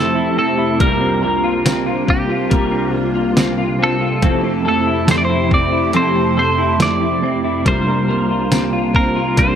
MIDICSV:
0, 0, Header, 1, 6, 480
1, 0, Start_track
1, 0, Key_signature, -1, "major"
1, 0, Tempo, 857143
1, 449, Time_signature, 4, 2, 24, 8
1, 5350, End_track
2, 0, Start_track
2, 0, Title_t, "Clean electric guitar"
2, 0, Program_c, 0, 27
2, 0, Note_on_c, 0, 69, 94
2, 210, Note_off_c, 0, 69, 0
2, 216, Note_on_c, 0, 69, 94
2, 436, Note_off_c, 0, 69, 0
2, 454, Note_on_c, 0, 70, 86
2, 1177, Note_on_c, 0, 67, 74
2, 1193, Note_off_c, 0, 70, 0
2, 1647, Note_off_c, 0, 67, 0
2, 1647, Note_on_c, 0, 65, 74
2, 1870, Note_off_c, 0, 65, 0
2, 2148, Note_on_c, 0, 69, 106
2, 2616, Note_off_c, 0, 69, 0
2, 2623, Note_on_c, 0, 69, 93
2, 2860, Note_off_c, 0, 69, 0
2, 2862, Note_on_c, 0, 72, 105
2, 2896, Note_off_c, 0, 72, 0
2, 2899, Note_on_c, 0, 74, 89
2, 2933, Note_off_c, 0, 74, 0
2, 2939, Note_on_c, 0, 72, 100
2, 3099, Note_off_c, 0, 72, 0
2, 3102, Note_on_c, 0, 74, 101
2, 3338, Note_off_c, 0, 74, 0
2, 3340, Note_on_c, 0, 72, 107
2, 3572, Note_off_c, 0, 72, 0
2, 3579, Note_on_c, 0, 72, 99
2, 3819, Note_off_c, 0, 72, 0
2, 3822, Note_on_c, 0, 74, 117
2, 4297, Note_off_c, 0, 74, 0
2, 4300, Note_on_c, 0, 72, 106
2, 5015, Note_off_c, 0, 72, 0
2, 5017, Note_on_c, 0, 70, 86
2, 5255, Note_off_c, 0, 70, 0
2, 5257, Note_on_c, 0, 72, 99
2, 5350, Note_off_c, 0, 72, 0
2, 5350, End_track
3, 0, Start_track
3, 0, Title_t, "Clean electric guitar"
3, 0, Program_c, 1, 27
3, 0, Note_on_c, 1, 60, 60
3, 0, Note_on_c, 1, 64, 59
3, 0, Note_on_c, 1, 69, 62
3, 76, Note_off_c, 1, 64, 0
3, 83, Note_on_c, 1, 64, 65
3, 201, Note_off_c, 1, 60, 0
3, 203, Note_on_c, 1, 60, 62
3, 316, Note_off_c, 1, 64, 0
3, 323, Note_on_c, 1, 64, 58
3, 444, Note_on_c, 1, 55, 86
3, 445, Note_off_c, 1, 69, 0
3, 447, Note_on_c, 1, 70, 72
3, 494, Note_off_c, 1, 64, 0
3, 560, Note_off_c, 1, 60, 0
3, 562, Note_on_c, 1, 60, 65
3, 678, Note_off_c, 1, 70, 0
3, 684, Note_on_c, 1, 70, 70
3, 804, Note_on_c, 1, 65, 59
3, 920, Note_off_c, 1, 60, 0
3, 922, Note_on_c, 1, 60, 71
3, 1041, Note_off_c, 1, 65, 0
3, 1043, Note_on_c, 1, 65, 61
3, 1160, Note_off_c, 1, 60, 0
3, 1162, Note_on_c, 1, 60, 72
3, 1281, Note_off_c, 1, 65, 0
3, 1283, Note_on_c, 1, 65, 64
3, 1393, Note_off_c, 1, 55, 0
3, 1396, Note_off_c, 1, 70, 0
3, 1400, Note_on_c, 1, 55, 83
3, 1403, Note_on_c, 1, 70, 70
3, 1518, Note_off_c, 1, 60, 0
3, 1520, Note_on_c, 1, 60, 63
3, 1646, Note_off_c, 1, 70, 0
3, 1762, Note_off_c, 1, 65, 0
3, 1764, Note_on_c, 1, 65, 59
3, 1881, Note_off_c, 1, 60, 0
3, 1883, Note_on_c, 1, 60, 61
3, 2001, Note_off_c, 1, 65, 0
3, 2004, Note_on_c, 1, 65, 69
3, 2120, Note_off_c, 1, 60, 0
3, 2122, Note_on_c, 1, 60, 61
3, 2240, Note_off_c, 1, 65, 0
3, 2242, Note_on_c, 1, 65, 58
3, 2362, Note_off_c, 1, 60, 0
3, 2364, Note_on_c, 1, 60, 88
3, 2368, Note_on_c, 1, 69, 70
3, 2412, Note_off_c, 1, 55, 0
3, 2484, Note_off_c, 1, 60, 0
3, 2487, Note_on_c, 1, 60, 65
3, 2597, Note_off_c, 1, 69, 0
3, 2604, Note_on_c, 1, 69, 71
3, 2726, Note_off_c, 1, 65, 0
3, 2728, Note_on_c, 1, 64, 65
3, 2846, Note_off_c, 1, 60, 0
3, 2848, Note_on_c, 1, 60, 70
3, 2959, Note_off_c, 1, 64, 0
3, 2966, Note_on_c, 1, 64, 67
3, 3081, Note_off_c, 1, 60, 0
3, 3083, Note_on_c, 1, 60, 65
3, 3198, Note_off_c, 1, 64, 0
3, 3205, Note_on_c, 1, 64, 65
3, 3321, Note_off_c, 1, 69, 0
3, 3322, Note_off_c, 1, 60, 0
3, 3324, Note_on_c, 1, 60, 93
3, 3327, Note_on_c, 1, 69, 78
3, 3443, Note_off_c, 1, 60, 0
3, 3446, Note_on_c, 1, 60, 60
3, 3560, Note_off_c, 1, 69, 0
3, 3566, Note_on_c, 1, 69, 65
3, 3677, Note_off_c, 1, 64, 0
3, 3684, Note_on_c, 1, 64, 67
3, 3804, Note_off_c, 1, 60, 0
3, 3806, Note_on_c, 1, 60, 66
3, 3918, Note_off_c, 1, 64, 0
3, 3925, Note_on_c, 1, 64, 67
3, 4046, Note_off_c, 1, 60, 0
3, 4048, Note_on_c, 1, 60, 62
3, 4160, Note_off_c, 1, 64, 0
3, 4167, Note_on_c, 1, 64, 64
3, 4286, Note_on_c, 1, 55, 83
3, 4287, Note_off_c, 1, 69, 0
3, 4289, Note_on_c, 1, 70, 76
3, 4336, Note_off_c, 1, 64, 0
3, 4402, Note_off_c, 1, 60, 0
3, 4405, Note_on_c, 1, 60, 61
3, 4520, Note_off_c, 1, 70, 0
3, 4527, Note_on_c, 1, 70, 69
3, 4648, Note_on_c, 1, 65, 61
3, 4765, Note_off_c, 1, 60, 0
3, 4768, Note_on_c, 1, 60, 71
3, 4884, Note_off_c, 1, 65, 0
3, 4886, Note_on_c, 1, 65, 65
3, 5001, Note_off_c, 1, 60, 0
3, 5003, Note_on_c, 1, 60, 68
3, 5125, Note_off_c, 1, 65, 0
3, 5127, Note_on_c, 1, 65, 69
3, 5239, Note_off_c, 1, 55, 0
3, 5242, Note_off_c, 1, 70, 0
3, 5246, Note_on_c, 1, 55, 89
3, 5249, Note_on_c, 1, 70, 74
3, 5350, Note_off_c, 1, 55, 0
3, 5350, Note_off_c, 1, 60, 0
3, 5350, Note_off_c, 1, 65, 0
3, 5350, Note_off_c, 1, 70, 0
3, 5350, End_track
4, 0, Start_track
4, 0, Title_t, "Analog synth pad"
4, 0, Program_c, 2, 89
4, 0, Note_on_c, 2, 41, 75
4, 0, Note_on_c, 2, 48, 75
4, 0, Note_on_c, 2, 57, 68
4, 0, Note_on_c, 2, 64, 79
4, 0, Note_on_c, 2, 67, 90
4, 428, Note_off_c, 2, 57, 0
4, 429, Note_off_c, 2, 41, 0
4, 429, Note_off_c, 2, 64, 0
4, 429, Note_off_c, 2, 67, 0
4, 444, Note_on_c, 2, 65, 87
4, 445, Note_on_c, 2, 58, 75
4, 446, Note_on_c, 2, 36, 86
4, 446, Note_on_c, 2, 62, 69
4, 2347, Note_off_c, 2, 58, 0
4, 2347, Note_off_c, 2, 65, 0
4, 2348, Note_off_c, 2, 36, 0
4, 2348, Note_off_c, 2, 62, 0
4, 2368, Note_on_c, 2, 57, 68
4, 2368, Note_on_c, 2, 64, 76
4, 2368, Note_on_c, 2, 67, 87
4, 2369, Note_on_c, 2, 41, 80
4, 4269, Note_off_c, 2, 41, 0
4, 4269, Note_off_c, 2, 57, 0
4, 4269, Note_off_c, 2, 64, 0
4, 4269, Note_off_c, 2, 67, 0
4, 4295, Note_on_c, 2, 36, 76
4, 4295, Note_on_c, 2, 58, 72
4, 4295, Note_on_c, 2, 62, 73
4, 4295, Note_on_c, 2, 65, 89
4, 5350, Note_off_c, 2, 36, 0
4, 5350, Note_off_c, 2, 48, 0
4, 5350, Note_off_c, 2, 58, 0
4, 5350, Note_off_c, 2, 62, 0
4, 5350, Note_off_c, 2, 65, 0
4, 5350, End_track
5, 0, Start_track
5, 0, Title_t, "Clean electric guitar"
5, 0, Program_c, 3, 27
5, 0, Note_on_c, 3, 53, 78
5, 0, Note_on_c, 3, 57, 80
5, 0, Note_on_c, 3, 60, 83
5, 0, Note_on_c, 3, 64, 90
5, 194, Note_off_c, 3, 64, 0
5, 201, Note_on_c, 3, 64, 54
5, 205, Note_off_c, 3, 53, 0
5, 208, Note_off_c, 3, 60, 0
5, 209, Note_off_c, 3, 57, 0
5, 214, Note_on_c, 3, 60, 50
5, 227, Note_on_c, 3, 57, 46
5, 443, Note_on_c, 3, 48, 81
5, 445, Note_off_c, 3, 64, 0
5, 448, Note_off_c, 3, 57, 0
5, 450, Note_on_c, 3, 55, 87
5, 451, Note_off_c, 3, 60, 0
5, 455, Note_on_c, 3, 58, 78
5, 462, Note_on_c, 3, 65, 91
5, 676, Note_off_c, 3, 65, 0
5, 683, Note_on_c, 3, 65, 55
5, 686, Note_off_c, 3, 48, 0
5, 689, Note_off_c, 3, 55, 0
5, 689, Note_off_c, 3, 58, 0
5, 695, Note_on_c, 3, 58, 53
5, 708, Note_on_c, 3, 55, 42
5, 924, Note_off_c, 3, 55, 0
5, 925, Note_on_c, 3, 48, 76
5, 926, Note_off_c, 3, 65, 0
5, 929, Note_off_c, 3, 58, 0
5, 931, Note_on_c, 3, 55, 79
5, 936, Note_on_c, 3, 58, 86
5, 940, Note_on_c, 3, 65, 88
5, 1157, Note_off_c, 3, 65, 0
5, 1164, Note_on_c, 3, 65, 53
5, 1167, Note_off_c, 3, 48, 0
5, 1169, Note_off_c, 3, 58, 0
5, 1170, Note_off_c, 3, 55, 0
5, 1176, Note_on_c, 3, 58, 57
5, 1188, Note_on_c, 3, 55, 47
5, 1404, Note_off_c, 3, 55, 0
5, 1404, Note_on_c, 3, 48, 63
5, 1406, Note_off_c, 3, 65, 0
5, 1411, Note_on_c, 3, 55, 68
5, 1412, Note_off_c, 3, 58, 0
5, 1420, Note_on_c, 3, 58, 67
5, 1426, Note_on_c, 3, 65, 73
5, 1637, Note_off_c, 3, 65, 0
5, 1643, Note_on_c, 3, 65, 55
5, 1646, Note_off_c, 3, 48, 0
5, 1649, Note_off_c, 3, 58, 0
5, 1650, Note_off_c, 3, 55, 0
5, 1656, Note_on_c, 3, 58, 51
5, 1667, Note_on_c, 3, 55, 48
5, 1882, Note_off_c, 3, 55, 0
5, 1883, Note_on_c, 3, 48, 96
5, 1886, Note_off_c, 3, 65, 0
5, 1887, Note_off_c, 3, 58, 0
5, 1889, Note_on_c, 3, 55, 92
5, 1894, Note_on_c, 3, 58, 86
5, 1898, Note_on_c, 3, 65, 98
5, 2113, Note_off_c, 3, 65, 0
5, 2120, Note_on_c, 3, 65, 64
5, 2125, Note_off_c, 3, 48, 0
5, 2127, Note_off_c, 3, 58, 0
5, 2129, Note_off_c, 3, 55, 0
5, 2133, Note_on_c, 3, 58, 54
5, 2145, Note_on_c, 3, 55, 47
5, 2364, Note_off_c, 3, 65, 0
5, 2365, Note_on_c, 3, 53, 81
5, 2368, Note_off_c, 3, 55, 0
5, 2371, Note_off_c, 3, 58, 0
5, 2371, Note_on_c, 3, 57, 87
5, 2376, Note_on_c, 3, 60, 90
5, 2382, Note_on_c, 3, 64, 91
5, 2597, Note_off_c, 3, 64, 0
5, 2604, Note_on_c, 3, 64, 48
5, 2606, Note_off_c, 3, 53, 0
5, 2609, Note_off_c, 3, 57, 0
5, 2610, Note_off_c, 3, 60, 0
5, 2616, Note_on_c, 3, 60, 51
5, 2627, Note_on_c, 3, 57, 49
5, 2840, Note_on_c, 3, 53, 88
5, 2841, Note_off_c, 3, 57, 0
5, 2846, Note_off_c, 3, 60, 0
5, 2846, Note_off_c, 3, 64, 0
5, 2848, Note_on_c, 3, 57, 87
5, 2853, Note_on_c, 3, 60, 89
5, 2858, Note_on_c, 3, 64, 88
5, 3076, Note_off_c, 3, 64, 0
5, 3083, Note_on_c, 3, 64, 52
5, 3084, Note_off_c, 3, 53, 0
5, 3088, Note_off_c, 3, 57, 0
5, 3091, Note_off_c, 3, 60, 0
5, 3097, Note_on_c, 3, 60, 53
5, 3107, Note_on_c, 3, 57, 45
5, 3324, Note_on_c, 3, 53, 60
5, 3325, Note_off_c, 3, 64, 0
5, 3328, Note_off_c, 3, 57, 0
5, 3333, Note_off_c, 3, 60, 0
5, 3335, Note_on_c, 3, 57, 65
5, 3342, Note_on_c, 3, 60, 63
5, 3349, Note_on_c, 3, 64, 67
5, 3559, Note_off_c, 3, 64, 0
5, 3566, Note_off_c, 3, 53, 0
5, 3566, Note_on_c, 3, 64, 55
5, 3571, Note_off_c, 3, 57, 0
5, 3573, Note_off_c, 3, 60, 0
5, 3580, Note_on_c, 3, 60, 51
5, 3589, Note_on_c, 3, 57, 49
5, 3802, Note_off_c, 3, 57, 0
5, 3803, Note_on_c, 3, 53, 88
5, 3807, Note_off_c, 3, 64, 0
5, 3808, Note_off_c, 3, 60, 0
5, 3809, Note_on_c, 3, 57, 86
5, 3815, Note_on_c, 3, 60, 82
5, 3819, Note_on_c, 3, 64, 87
5, 4038, Note_off_c, 3, 64, 0
5, 4045, Note_off_c, 3, 53, 0
5, 4045, Note_on_c, 3, 64, 57
5, 4049, Note_off_c, 3, 57, 0
5, 4052, Note_off_c, 3, 60, 0
5, 4058, Note_on_c, 3, 60, 49
5, 4068, Note_on_c, 3, 57, 45
5, 4286, Note_off_c, 3, 64, 0
5, 4287, Note_on_c, 3, 48, 81
5, 4291, Note_off_c, 3, 57, 0
5, 4293, Note_off_c, 3, 60, 0
5, 4293, Note_on_c, 3, 55, 85
5, 4299, Note_on_c, 3, 58, 85
5, 4303, Note_on_c, 3, 65, 89
5, 4516, Note_off_c, 3, 65, 0
5, 4523, Note_on_c, 3, 65, 59
5, 4528, Note_off_c, 3, 48, 0
5, 4530, Note_off_c, 3, 58, 0
5, 4531, Note_off_c, 3, 55, 0
5, 4537, Note_on_c, 3, 58, 50
5, 4548, Note_on_c, 3, 55, 42
5, 4765, Note_off_c, 3, 55, 0
5, 4766, Note_off_c, 3, 65, 0
5, 4767, Note_on_c, 3, 48, 77
5, 4772, Note_off_c, 3, 58, 0
5, 4772, Note_on_c, 3, 55, 76
5, 4779, Note_on_c, 3, 58, 89
5, 4783, Note_on_c, 3, 65, 99
5, 5001, Note_off_c, 3, 65, 0
5, 5008, Note_off_c, 3, 48, 0
5, 5008, Note_on_c, 3, 65, 55
5, 5010, Note_off_c, 3, 55, 0
5, 5011, Note_off_c, 3, 58, 0
5, 5018, Note_on_c, 3, 58, 52
5, 5029, Note_on_c, 3, 55, 43
5, 5246, Note_on_c, 3, 48, 60
5, 5248, Note_off_c, 3, 65, 0
5, 5249, Note_off_c, 3, 55, 0
5, 5253, Note_off_c, 3, 58, 0
5, 5256, Note_on_c, 3, 55, 60
5, 5262, Note_on_c, 3, 58, 69
5, 5269, Note_on_c, 3, 65, 66
5, 5350, Note_off_c, 3, 48, 0
5, 5350, Note_off_c, 3, 55, 0
5, 5350, Note_off_c, 3, 58, 0
5, 5350, Note_off_c, 3, 65, 0
5, 5350, End_track
6, 0, Start_track
6, 0, Title_t, "Drums"
6, 449, Note_on_c, 9, 42, 75
6, 450, Note_on_c, 9, 36, 99
6, 505, Note_off_c, 9, 42, 0
6, 506, Note_off_c, 9, 36, 0
6, 928, Note_on_c, 9, 38, 110
6, 929, Note_on_c, 9, 54, 71
6, 930, Note_on_c, 9, 42, 78
6, 984, Note_off_c, 9, 38, 0
6, 985, Note_off_c, 9, 54, 0
6, 986, Note_off_c, 9, 42, 0
6, 1168, Note_on_c, 9, 36, 94
6, 1224, Note_off_c, 9, 36, 0
6, 1407, Note_on_c, 9, 42, 71
6, 1409, Note_on_c, 9, 36, 94
6, 1463, Note_off_c, 9, 42, 0
6, 1465, Note_off_c, 9, 36, 0
6, 1886, Note_on_c, 9, 38, 116
6, 1887, Note_on_c, 9, 54, 65
6, 1888, Note_on_c, 9, 42, 74
6, 1942, Note_off_c, 9, 38, 0
6, 1943, Note_off_c, 9, 54, 0
6, 1944, Note_off_c, 9, 42, 0
6, 2366, Note_on_c, 9, 36, 112
6, 2366, Note_on_c, 9, 42, 71
6, 2422, Note_off_c, 9, 36, 0
6, 2422, Note_off_c, 9, 42, 0
6, 2845, Note_on_c, 9, 38, 117
6, 2846, Note_on_c, 9, 54, 65
6, 2847, Note_on_c, 9, 42, 81
6, 2901, Note_off_c, 9, 38, 0
6, 2902, Note_off_c, 9, 54, 0
6, 2903, Note_off_c, 9, 42, 0
6, 3086, Note_on_c, 9, 36, 96
6, 3142, Note_off_c, 9, 36, 0
6, 3323, Note_on_c, 9, 42, 62
6, 3379, Note_off_c, 9, 42, 0
6, 3808, Note_on_c, 9, 38, 113
6, 3809, Note_on_c, 9, 54, 62
6, 3810, Note_on_c, 9, 42, 76
6, 3864, Note_off_c, 9, 38, 0
6, 3865, Note_off_c, 9, 54, 0
6, 3866, Note_off_c, 9, 42, 0
6, 4289, Note_on_c, 9, 36, 104
6, 4289, Note_on_c, 9, 42, 73
6, 4345, Note_off_c, 9, 36, 0
6, 4345, Note_off_c, 9, 42, 0
6, 4769, Note_on_c, 9, 38, 121
6, 4770, Note_on_c, 9, 54, 68
6, 4771, Note_on_c, 9, 42, 83
6, 4825, Note_off_c, 9, 38, 0
6, 4826, Note_off_c, 9, 54, 0
6, 4827, Note_off_c, 9, 42, 0
6, 5009, Note_on_c, 9, 36, 97
6, 5065, Note_off_c, 9, 36, 0
6, 5249, Note_on_c, 9, 42, 67
6, 5251, Note_on_c, 9, 36, 93
6, 5305, Note_off_c, 9, 42, 0
6, 5307, Note_off_c, 9, 36, 0
6, 5350, End_track
0, 0, End_of_file